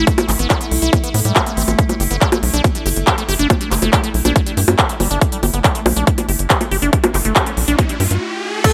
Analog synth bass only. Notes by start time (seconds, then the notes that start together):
0.29 A1
0.39 A1
0.71 C2
0.82 C2
1.14 A2
1.25 A2
1.57 A1
1.68 A1
2.00 G1
2.11 G1
2.43 B1
2.54 B1
2.86 G1
2.96 G1
3.29 G1
3.39 G1
3.71 G1
3.82 G1
4.14 B1
4.25 B1
4.57 G2
4.68 G2
5.00 G1
5.11 G1
5.43 G1
5.54 G1
5.86 B1
5.96 B1
6.29 G1
6.39 G1
6.71 G1
6.82 G1
7.14 G1
7.25 G1
7.57 B1
7.68 B1
8.00 G2
8.11 G2